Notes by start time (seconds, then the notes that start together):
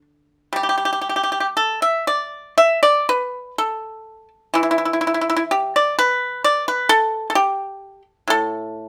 Already playing: D3
0.53 G3 G4
0.63 G4
0.69 G4
0.78 G4
0.85 G4
0.93 G4
1.01 G4
1.09 G4
1.16 G4
1.23 G4
1.32 G4
1.40 G4
1.57 A4
1.82 E5
2.07 D5
2.58 E5
2.83 D5
3.09 B4
3.58 A4
4.54 E3 E4
4.63 E4
4.71 E4
4.78 E4
4.85 E4
4.93 E4
5.01 E4
5.07 E4
5.14 E4
5.21 E4
5.30 E4
5.36 E4
5.51 G4
5.76 D5
5.99 B4
6.44 D5
6.68 B4
6.89 A4
7.30 A4
7.35 G4
8.28 A2 A4